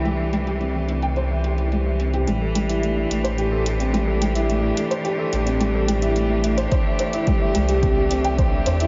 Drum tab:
HH |x-xxx-xxx-xxx-xx|x-xxx-xxx-xxx-xx|x-xxx-xxx-xxx-xx|x-xxx-xxx-xxx-xx|
BD |----------------|----------------|----------------|o---o---o---o---|